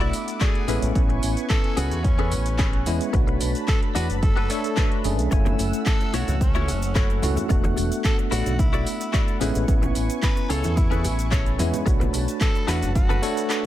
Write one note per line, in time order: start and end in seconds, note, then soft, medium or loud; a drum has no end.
0.00 0.10 B1 medium
0.00 0.64 A3 medium
0.00 0.65 A3 medium
0.00 0.65 B3 medium
0.00 0.65 D4 medium
0.00 0.13 E4 loud
0.00 0.43 E4 loud
0.00 0.66 F#4 medium
0.00 0.14 F#4 medium
0.00 0.14 A4 loud
0.00 0.14 D5 loud
0.00 0.64 F#5 medium
0.00 0.66 D6 medium
0.00 closed hi-hat soft
0.13 open hi-hat loud
0.13 cabasa medium
0.27 muted clean electric guitar stroke soft
0.27 closed hi-hat medium
0.27 cabasa soft
0.41 0.68 E4 medium
0.41 0.68 F#4 medium
0.41 0.83 G#4 loud
0.41 0.67 A4 medium
0.41 0.69 D5 loud
0.41 kick loud
0.41 clap loud
0.41 closed hi-hat medium
0.41 cabasa soft
0.55 closed hi-hat soft
0.67 0.80 A1 medium
0.67 0.92 G#3 medium
0.67 0.92 B3 medium
0.67 1.01 C#4 loud
0.67 0.92 C#4 medium
0.67 0.93 E4 loud
0.67 1.01 G#4 medium
0.67 1.01 A4 medium
0.67 5.28 B4 medium
0.67 1.02 B4 loud
0.67 3.11 G#5 medium
0.67 3.11 C#6 medium
0.67 open hi-hat loud
0.67 cabasa medium
0.82 0.93 A1 loud
0.82 closed hi-hat medium
0.82 cabasa soft
0.95 1.19 A1 loud
0.95 2.83 B3 medium
0.95 2.83 C#4 medium
0.95 2.84 E4 medium
0.95 kick loud
0.95 closed hi-hat medium
0.95 cabasa soft
1.09 muted clean electric guitar stroke medium
1.09 closed hi-hat soft
1.22 1.35 A1 medium
1.22 muted clean electric guitar stroke soft
1.22 open hi-hat loud
1.22 cabasa medium
1.37 closed hi-hat medium
1.37 cabasa soft
1.50 1.79 A4 loud
1.50 kick loud
1.50 clap loud
1.50 closed hi-hat medium
1.50 cabasa soft
1.64 muted clean electric guitar stroke soft
1.64 closed hi-hat soft
1.77 1.89 C#2 medium
1.77 1.98 C#4 medium
1.77 2.06 F#4 loud
1.77 1.98 G#4 medium
1.77 1.98 A4 medium
1.77 1.99 B4 loud
1.77 open hi-hat loud
1.77 cabasa medium
1.91 2.33 E2 medium
1.91 closed hi-hat soft
1.91 cabasa soft
2.04 2.86 C#4 medium
2.04 kick loud
2.04 closed hi-hat medium
2.04 cabasa soft
2.18 2.32 C#4 loud
2.18 2.32 G#4 loud
2.18 2.32 A4 loud
2.18 2.32 B4 loud
2.18 closed hi-hat soft
2.32 2.83 A1 medium
2.32 open hi-hat loud
2.32 cabasa medium
2.46 muted clean electric guitar stroke soft
2.46 closed hi-hat medium
2.46 cabasa soft
2.58 2.86 C#4 loud
2.58 2.86 G#4 medium
2.58 2.87 A4 medium
2.58 2.87 B4 loud
2.58 kick loud
2.58 clap loud
2.58 closed hi-hat soft
2.58 cabasa soft
2.73 closed hi-hat soft
2.86 2.98 E2 medium
2.86 3.10 G#3 medium
2.86 3.10 B3 medium
2.86 3.11 C#4 medium
2.86 3.11 E4 loud
2.86 open hi-hat loud
2.86 cabasa medium
3.01 closed hi-hat medium
3.01 cabasa soft
3.13 3.37 B1 loud
3.13 4.47 A3 medium
3.13 4.48 D4 medium
3.13 4.48 F#4 medium
3.13 4.47 C#5 medium
3.13 5.30 A5 medium
3.13 5.30 B5 medium
3.13 muted clean electric guitar stroke loud
3.13 kick loud
3.13 closed hi-hat medium
3.13 cabasa soft
3.27 muted clean electric guitar stroke medium
3.27 closed hi-hat soft
3.40 3.53 B1 medium
3.40 muted clean electric guitar stroke soft
3.40 open hi-hat loud
3.40 cabasa medium
3.55 closed hi-hat soft
3.55 cabasa soft
3.68 3.81 A4 loud
3.68 kick loud
3.68 clap loud
3.68 closed hi-hat medium
3.68 cabasa soft
3.82 muted clean electric guitar stroke soft
3.82 closed hi-hat soft
3.95 4.07 E2 medium
3.95 4.16 D4 medium
3.95 4.16 F#4 medium
3.95 4.07 F#4 loud
3.95 4.16 A4 medium
3.95 4.17 B4 loud
3.95 open hi-hat loud
3.95 cabasa medium
4.10 4.47 F#1 medium
4.10 closed hi-hat soft
4.10 cabasa soft
4.22 5.00 A4 loud
4.22 kick loud
4.22 closed hi-hat soft
4.22 cabasa soft
4.36 4.50 D4 loud
4.36 4.50 F#4 loud
4.36 4.50 A4 loud
4.36 4.50 B4 loud
4.36 closed hi-hat soft
4.50 5.01 A3 loud
4.50 5.02 D4 medium
4.50 5.02 A4 loud
4.50 5.02 C#5 medium
4.50 open hi-hat loud
4.50 cabasa medium
4.64 muted clean electric guitar stroke soft
4.64 closed hi-hat medium
4.64 cabasa soft
4.76 5.04 D4 medium
4.76 5.04 F#4 medium
4.76 5.05 A4 medium
4.76 5.05 B4 loud
4.76 kick loud
4.76 clap loud
4.76 closed hi-hat medium
4.76 cabasa soft
4.92 closed hi-hat soft
5.04 5.19 F#1 medium
5.04 5.29 A3 medium
5.04 5.29 C#4 medium
5.04 5.29 D4 medium
5.04 5.29 G#4 medium
5.04 open hi-hat loud
5.04 cabasa medium
5.19 5.30 B1 loud
5.19 closed hi-hat medium
5.19 cabasa soft
5.31 5.55 F#1 loud
5.31 7.19 A3 medium
5.31 9.37 A3 medium
5.31 7.20 C#4 medium
5.31 7.20 E4 medium
5.31 9.37 F#5 medium
5.31 7.20 G#5 medium
5.31 7.48 E6 medium
5.31 muted clean electric guitar stroke loud
5.31 kick loud
5.31 closed hi-hat medium
5.31 cabasa medium
5.31 cabasa soft
5.45 muted clean electric guitar stroke medium
5.45 closed hi-hat soft
5.45 high conga medium
5.45 cabasa soft
5.59 5.71 F#1 medium
5.59 muted clean electric guitar stroke soft
5.59 open hi-hat loud
5.59 cabasa medium
5.73 closed hi-hat soft
5.73 cabasa medium
5.73 cabasa soft
5.86 6.15 A4 loud
5.86 kick loud
5.86 clap loud
5.86 closed hi-hat medium
5.86 cabasa medium
5.86 cabasa soft
6.00 muted clean electric guitar stroke soft
6.00 closed hi-hat soft
6.00 cabasa soft
6.13 6.26 B1 medium
6.13 6.34 E4 medium
6.13 6.35 F#4 medium
6.13 6.41 F#4 loud
6.13 6.35 A4 medium
6.13 6.35 C#5 loud
6.13 open hi-hat loud
6.13 cabasa medium
6.28 6.69 C#2 medium
6.28 closed hi-hat soft
6.28 low conga medium
6.28 cabasa soft
6.28 cabasa medium
6.41 7.19 C#4 medium
6.41 kick loud
6.41 closed hi-hat soft
6.41 cabasa medium
6.41 cabasa soft
6.55 6.68 E4 loud
6.55 6.68 F#4 loud
6.55 6.68 A4 loud
6.55 6.69 C#5 loud
6.55 closed hi-hat soft
6.55 high conga medium
6.55 cabasa soft
6.68 7.19 F#1 medium
6.68 open hi-hat loud
6.68 high bongo medium
6.68 cabasa medium
6.82 muted clean electric guitar stroke soft
6.82 closed hi-hat medium
6.82 cabasa medium
6.82 cabasa soft
6.95 7.23 E4 medium
6.95 7.23 F#4 medium
6.95 7.23 A4 medium
6.95 7.23 C#5 medium
6.95 kick loud
6.95 clap loud
6.95 closed hi-hat medium
6.95 cabasa medium
6.95 cabasa soft
7.10 closed hi-hat soft
7.10 cabasa soft
7.22 7.35 C#2 medium
7.22 7.47 A3 medium
7.22 7.47 C#4 medium
7.22 7.47 E4 medium
7.22 7.47 F#4 loud
7.22 open hi-hat loud
7.22 low conga medium
7.22 cabasa medium
7.36 closed hi-hat medium
7.36 high bongo medium
7.36 low conga medium
7.36 cabasa soft
7.36 cabasa medium
7.49 7.73 E1 loud
7.49 9.37 A3 medium
7.49 9.38 B3 medium
7.49 9.38 D4 medium
7.49 9.38 F#4 medium
7.49 muted clean electric guitar stroke loud
7.49 kick loud
7.49 closed hi-hat medium
7.49 cabasa medium
7.49 cabasa soft
7.64 muted clean electric guitar stroke medium
7.64 closed hi-hat soft
7.64 high conga medium
7.64 cabasa soft
7.76 7.89 E1 medium
7.76 muted clean electric guitar stroke soft
7.76 open hi-hat loud
7.76 high bongo medium
7.76 cabasa medium
7.92 closed hi-hat medium
7.92 cabasa soft
7.92 cabasa medium
8.04 8.17 A4 loud
8.04 kick loud
8.04 clap loud
8.04 closed hi-hat medium
8.04 cabasa medium
8.04 cabasa soft
8.18 muted clean electric guitar stroke soft
8.18 closed hi-hat soft
8.18 cabasa soft
8.31 8.44 A1 medium
8.31 8.52 E4 medium
8.31 8.52 F#4 medium
8.31 8.61 F#4 loud
8.31 8.53 A4 medium
8.31 8.53 D5 loud
8.31 open hi-hat loud
8.31 high bongo medium
8.31 cabasa medium
8.46 8.83 B1 medium
8.46 closed hi-hat medium
8.46 low conga medium
8.46 cabasa medium
8.46 cabasa soft
8.59 9.41 E4 medium
8.59 kick loud
8.59 closed hi-hat medium
8.59 cabasa medium
8.59 cabasa soft
8.73 8.86 E4 loud
8.73 8.86 F#4 loud
8.73 8.87 A4 loud
8.73 8.87 D5 loud
8.73 closed hi-hat soft
8.73 cabasa soft
8.87 open hi-hat loud
8.87 cabasa medium
9.00 muted clean electric guitar stroke soft
9.00 closed hi-hat medium
9.00 cabasa medium
9.00 cabasa soft
9.13 9.41 E4 medium
9.13 9.40 F#4 medium
9.13 9.40 A4 medium
9.13 9.41 D5 loud
9.13 kick loud
9.13 clap loud
9.13 closed hi-hat medium
9.13 cabasa soft
9.13 cabasa medium
9.28 closed hi-hat soft
9.28 cabasa soft
9.40 9.53 A1 medium
9.40 9.65 G#3 medium
9.40 9.65 B3 medium
9.40 9.73 C#4 loud
9.40 9.65 C#4 medium
9.40 9.65 E4 loud
9.40 9.74 G#4 medium
9.40 9.74 A4 medium
9.40 13.66 B4 medium
9.40 9.74 B4 loud
9.40 11.84 G#5 medium
9.40 11.84 C#6 medium
9.40 open hi-hat loud
9.40 high conga medium
9.40 cabasa medium
9.55 9.66 A1 loud
9.55 closed hi-hat medium
9.55 cabasa medium
9.55 cabasa soft
9.68 9.91 A1 loud
9.68 11.56 B3 medium
9.68 11.56 C#4 medium
9.68 11.57 E4 medium
9.68 kick loud
9.68 closed hi-hat medium
9.68 cabasa medium
9.68 cabasa soft
9.82 muted clean electric guitar stroke medium
9.82 closed hi-hat soft
9.82 high conga medium
9.82 cabasa soft
9.95 10.07 A1 medium
9.95 muted clean electric guitar stroke soft
9.95 open hi-hat loud
9.95 cabasa medium
10.10 closed hi-hat medium
10.10 cabasa soft
10.10 cabasa medium
10.22 10.51 B4 loud
10.22 kick loud
10.22 clap loud
10.22 closed hi-hat medium
10.22 cabasa medium
10.22 cabasa soft
10.37 muted clean electric guitar stroke soft
10.37 closed hi-hat soft
10.37 cabasa soft
10.49 10.62 C#2 loud
10.49 10.71 C#4 medium
10.49 10.71 G#4 medium
10.49 10.78 A4 loud
10.49 10.71 A4 medium
10.49 10.71 C#5 loud
10.49 open hi-hat loud
10.49 cabasa medium
10.64 11.06 E2 medium
10.64 closed hi-hat medium
10.64 low conga medium
10.64 cabasa medium
10.64 cabasa soft
10.77 11.59 E4 loud
10.77 kick loud
10.77 closed hi-hat medium
10.77 cabasa medium
10.77 cabasa soft
10.91 11.04 C#4 loud
10.91 11.05 G#4 medium
10.91 11.05 A4 loud
10.91 11.05 B4 loud
10.91 closed hi-hat soft
10.91 high conga medium
10.91 cabasa soft
11.04 11.56 A1 medium
11.04 open hi-hat loud
11.04 high bongo medium
11.04 cabasa medium
11.18 muted clean electric guitar stroke soft
11.18 closed hi-hat medium
11.18 cabasa soft
11.18 cabasa medium
11.31 11.59 C#4 loud
11.31 11.59 G#4 medium
11.31 11.59 A4 medium
11.31 11.59 C#5 loud
11.31 kick loud
11.31 clap loud
11.31 closed hi-hat medium
11.31 cabasa soft
11.31 cabasa medium
11.46 closed hi-hat soft
11.46 cabasa soft
11.59 11.71 E2 medium
11.59 11.83 G#3 medium
11.59 11.83 B3 medium
11.59 11.83 C#4 medium
11.59 11.84 E4 loud
11.59 open hi-hat loud
11.59 low conga medium
11.59 cabasa medium
11.73 closed hi-hat medium
11.73 high bongo medium
11.73 low conga medium
11.73 cabasa soft
11.73 cabasa medium
11.86 12.09 B1 loud
11.86 13.20 A3 medium
11.86 13.20 D4 medium
11.86 13.21 F#4 medium
11.86 13.20 C#5 medium
11.86 13.66 A5 medium
11.86 muted clean electric guitar stroke loud
11.86 kick loud
11.86 closed hi-hat medium
11.86 cabasa soft
11.86 cabasa medium
12.00 muted clean electric guitar stroke medium
12.00 closed hi-hat soft
12.00 high conga medium
12.00 cabasa soft
12.13 12.26 B1 medium
12.13 muted clean electric guitar stroke soft
12.13 open hi-hat loud
12.13 high bongo medium
12.13 cabasa medium
12.28 closed hi-hat medium
12.28 cabasa medium
12.28 cabasa soft
12.41 12.69 A4 loud
12.41 kick loud
12.41 clap loud
12.41 closed hi-hat medium
12.41 cabasa soft
12.41 cabasa medium
12.55 muted clean electric guitar stroke soft
12.55 closed hi-hat soft
12.55 cabasa soft
12.67 12.80 E2 medium
12.67 12.89 D4 loud
12.67 12.89 F#4 medium
12.67 12.94 F#4 loud
12.67 12.89 A4 medium
12.67 12.89 B4 loud
12.67 clap medium
12.67 open hi-hat loud
12.67 high bongo medium
12.67 cabasa medium
12.82 13.19 F#1 medium
12.82 closed hi-hat medium
12.82 low conga medium
12.82 cabasa soft
12.82 cabasa medium
12.95 13.66 F#4 loud
12.95 kick loud
12.95 closed hi-hat medium
12.95 cabasa soft
12.95 cabasa medium
13.09 13.22 D4 loud
13.09 13.23 F#4 medium
13.09 13.23 A4 loud
13.09 13.23 B4 loud
13.09 closed hi-hat soft
13.09 high conga medium
13.09 cabasa soft
13.22 13.66 A3 loud
13.22 13.66 D4 medium
13.22 13.66 A4 loud
13.22 13.66 C#5 medium
13.22 open hi-hat loud
13.22 high bongo medium
13.22 cabasa medium
13.36 muted clean electric guitar stroke soft
13.36 closed hi-hat medium
13.36 cabasa medium
13.36 cabasa soft
13.49 13.66 D4 medium
13.49 13.66 F#4 medium
13.49 13.66 A4 medium
13.49 13.66 B4 loud
13.49 clap loud
13.49 closed hi-hat medium
13.49 cabasa soft
13.49 cabasa medium